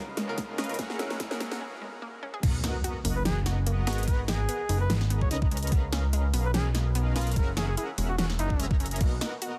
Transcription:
Already playing: supersaw synth C#4 A#4 B4 D#5 F5, riser
0.17 synth arpeggio sound G#3, snare, closed hi-hat
0.27 grand piano C#3 G#3 B3 D#4 F4 A#4
0.38 synth arpeggio sound B3, kick, snare, closed hi-hat
0.48 grand piano C#3 G#3 B3 D#4 F4 A#4
0.58 synth arpeggio sound C#4, supersaw synth C#4 A#4 B4 D#5 F5, snare, closed hi-hat
0.64 closed hi-hat
0.68 grand piano C#3 G#3 B3 D#4 F4 A#4, closed hi-hat
0.74 closed hi-hat
0.79 synth arpeggio sound G#3, supersaw synth C#4 G#4 A#4 E5 F#5, kick, snare, closed hi-hat
0.90 snare
0.98 grand piano F#3 C#4 E4 G#4 A#4, synth arpeggio sound C#4, snare, closed hi-hat
1.10 snare
1.20 synth arpeggio sound E4, kick, snare, closed hi-hat
1.30 grand piano F#3 C#4 E4 G#4 A#4, snare
1.40 synth arpeggio sound G#3, snare, closed hi-hat
1.52 snare
1.61 synth arpeggio sound C#4
1.82 synth arpeggio sound G#3
2.02 synth arpeggio sound A#3
2.23 synth arpeggio sound C#4
2.34 synth arpeggio sound G#4
2.43 analog synth bass B1, synth arpeggio sound A#3, supersaw synth B3 F#4 A#4 D#5 F#5, kick, closed hi-hat, crash, impact
2.64 synth arpeggio sound D#4, snare, closed hi-hat
2.84 synth arpeggio sound F#4, closed hi-hat
3.05 analog synth bass F#1, synth arpeggio sound A#3, open hi-hat
3.16 muted trumpet B4
3.25 synth arpeggio sound D#4, muted trumpet G#4, snare, closed hi-hat
3.46 synth arpeggio sound F#4, snare, closed hi-hat
3.67 synth arpeggio sound A#3, closed hi-hat
3.87 analog synth bass G#1, supersaw synth B3 G#4 A#4 D#5 F#5, synth arpeggio sound B3, muted trumpet F#4, snare, closed hi-hat
3.93 closed hi-hat
3.98 closed hi-hat
4.03 closed hi-hat
4.07 supersaw synth B3 G#4 A#4 D#5 F#5, synth arpeggio sound D#4, muted trumpet B4, kick, closed hi-hat
4.28 synth arpeggio sound G#3, muted trumpet G#4, snare, closed hi-hat
4.49 synth arpeggio sound B3, closed hi-hat
4.69 analog synth bass F#1, synth arpeggio sound D#4, open hi-hat
4.81 muted trumpet B4
4.90 analog synth bass G#1, synth arpeggio sound G#3, snare, closed hi-hat
5.01 snare
5.10 synth arpeggio sound B3, closed hi-hat
5.21 muted trumpet C#5, kick
5.31 analog synth bass C#2, supersaw synth C#4 A#4 B4 D#5 A#5, synth arpeggio sound D#4, muted trumpet D#5, closed hi-hat
5.42 muted trumpet D#5, kick
5.51 synth arpeggio sound G#3, closed hi-hat
5.57 closed hi-hat
5.63 closed hi-hat
5.67 closed hi-hat
5.72 synth arpeggio sound B3, supersaw synth C#4 A#4 B4 D#5 F5, kick, closed hi-hat
5.92 synth arpeggio sound C#4, snare, closed hi-hat
6.13 synth arpeggio sound G#3, closed hi-hat
6.34 analog synth bass B1, synth arpeggio sound B3, open hi-hat
6.45 muted trumpet B4
6.54 synth arpeggio sound C#4, muted trumpet G#4, snare, closed hi-hat
6.75 synth arpeggio sound G#3, snare, closed hi-hat
6.95 synth arpeggio sound B3, closed hi-hat
7.16 supersaw synth C#4 A#4 B4 D#5 F5, synth arpeggio sound C#4, muted trumpet F4, snare, closed hi-hat
7.21 closed hi-hat
7.27 closed hi-hat
7.32 closed hi-hat
7.36 analog synth bass F#1, synth arpeggio sound G#3, supersaw synth C#4 G#4 A#4 E5 F#5, muted trumpet A#4, kick, closed hi-hat
7.57 synth arpeggio sound C#4, muted trumpet G#4, snare, closed hi-hat
7.68 muted trumpet G#4
7.77 synth arpeggio sound E4, muted trumpet G#4, closed hi-hat
7.98 analog synth bass E1, synth arpeggio sound G#3, open hi-hat
8.09 muted trumpet F#4
8.18 analog synth bass E1, synth arpeggio sound C#4, muted trumpet F#4, snare, closed hi-hat
8.30 snare
8.39 analog synth bass F#1, muted trumpet D#4, synth arpeggio sound E4, closed hi-hat
8.50 kick
8.60 synth arpeggio sound G#3, supersaw synth C#4 G#4 A#4 E5 A#5, closed hi-hat
8.71 kick
8.80 synth arpeggio sound C#4, closed hi-hat
8.86 closed hi-hat
8.91 closed hi-hat
8.96 closed hi-hat
9.01 analog synth bass B1, synth arpeggio sound A#3, supersaw synth B3 F#4 A#4 D#5 F#5, kick, closed hi-hat, crash
9.21 synth arpeggio sound D#4, snare, closed hi-hat
9.42 synth arpeggio sound F#4, closed hi-hat

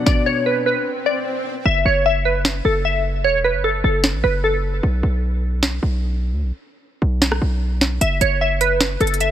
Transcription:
Already playing: grand piano B2 B3 D4
0.06 synth pluck D5, kick, snare, swell
0.26 synth pluck C#5
0.46 synth pluck B4
0.66 synth pluck B4
1.06 synth pluck D5
1.65 808-style bass F#1, synth pluck E5
1.85 808-style bass F#1, synth pluck C#5
2.06 synth pluck E5
2.25 synth pluck B4
2.45 snare
2.65 808-style bass F#1, synth pluck A4
2.85 synth pluck E5
3.24 808-style bass E1, synth pluck C#5
3.44 synth pluck B4
3.54 808-style bass F#1
3.64 synth pluck A4
3.84 808-style bass F#1, synth pluck A4
4.04 snare
4.14 808-style bass A1
4.24 808-style bass F#1, synth pluck B4
4.44 synth pluck A4
4.83 808-style bass B1
5.03 808-style bass B1
5.63 snare
5.83 808-style bass B1
6.32 808-style bass D2
6.42 808-style bass B1
7.02 808-style bass B1
7.22 snare
7.32 cross-stick
7.42 808-style bass B1
7.81 snare
8.01 808-style bass F#1, synth pluck E5, closed hi-hat
8.21 808-style bass F#1, synth pluck C#5, closed hi-hat
8.41 synth pluck E5
8.61 synth pluck B4, closed hi-hat
8.81 snare, closed hi-hat
9.00 808-style bass F#1, synth pluck A4, closed hi-hat
9.07 closed hi-hat
9.14 closed hi-hat
9.20 synth pluck E5, closed hi-hat

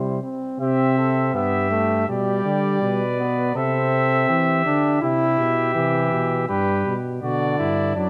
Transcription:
Already playing: bass trombone C3, trombone G3, flugelhorn E4, cornet C5
0.23 trombone C4
0.60 bass trombone C3, trombone C4, flugelhorn G4, cornet E5
0.98 flugelhorn A4
1.34 bass trombone G2, trombone B3, flugelhorn G4, cornet E5
1.71 trombone A3
2.08 bass trombone B2, trombone G3, flugelhorn G4, cornet D5
2.45 bass trombone D3
2.82 bass trombone B2, flugelhorn B4
3.19 trombone B3
3.55 bass trombone C3, trombone C4, flugelhorn A4, cornet E5
4.29 bass trombone E3, flugelhorn G4
4.65 bass trombone D3, trombone D4
5.02 bass trombone C3, trombone E4, flugelhorn G4, cornet E5
5.39 bass trombone B2
5.75 bass trombone C3, trombone E3
6.12 bass trombone B2
6.48 bass trombone G2, trombone G3, flugelhorn G4, cornet B4
6.86 bass trombone B2
7.22 bass trombone B2, trombone D3, flugelhorn F#4, cornet D5
7.58 bass trombone G2, flugelhorn E4
7.96 bass trombone F#2, trombone F#3, flugelhorn D4, cornet D5

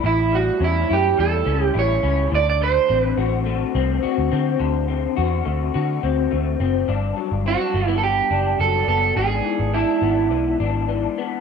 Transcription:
Already playing: clean electric guitar E4
0.03 picked electric bass A1, clean electric guitar A2 E4
0.32 clean electric guitar G3 F#4
0.60 picked electric bass E2, clean electric guitar C#4 E4
0.89 picked electric bass F#2, clean electric guitar E4 G4
1.17 picked electric bass E2, clean electric guitar G3 A4
1.46 picked electric bass C#2, clean electric guitar C#4
1.65 clean electric guitar G4
1.74 picked electric bass A1, clean electric guitar E4
1.79 clean electric guitar C#5
2.03 picked electric bass C#2, clean electric guitar C#4
2.32 picked electric bass D2, clean electric guitar D3 D5
2.50 clean electric guitar D5
2.61 clean electric guitar A3 C5
2.88 picked electric bass A1, clean electric guitar C4
3.00 clean electric guitar B4
3.17 picked electric bass A1, clean electric guitar F#4
3.46 clean electric guitar A3
3.75 picked electric bass C2, clean electric guitar C4
4.03 clean electric guitar F#4, muted picked electric bass stroke
4.18 picked electric bass D2
4.31 picked electric bass D3, clean electric guitar C4
4.60 picked electric bass D2, clean electric guitar D3
4.88 clean electric guitar C4
5.17 picked electric bass E2, clean electric guitar F#4
5.45 picked electric bass D2, clean electric guitar A3
5.74 picked electric bass D3, clean electric guitar F#4
6.03 picked electric bass D2, clean electric guitar C4
6.31 picked electric bass D2, clean electric guitar A3
6.60 picked electric bass F#1, clean electric guitar C4
6.88 picked electric bass G1, clean electric guitar G2 D4
7.16 clean electric guitar F#3
7.32 picked electric bass G1
7.46 clean electric guitar C4 F#4
7.60 clean electric guitar D4
7.74 picked electric bass G1, clean electric guitar A3
7.88 clean electric guitar B3
7.98 clean electric guitar A4
8.04 clean electric guitar G4
8.31 picked electric bass F#1, clean electric guitar D4
8.59 picked electric bass F#1, clean electric guitar F#3 A4
8.88 picked electric bass F#1, clean electric guitar B3 A4
9.16 picked electric bass G#1, clean electric guitar G#2 D4 G#4
9.45 clean electric guitar E3
9.60 picked electric bass G#1
9.74 clean electric guitar D4 E4
10.02 picked electric bass G#1, clean electric guitar B3
10.31 picked electric bass B1, clean electric guitar E3
10.60 picked electric bass G#1, clean electric guitar D4
10.89 clean electric guitar E3
11.18 clean electric guitar B3

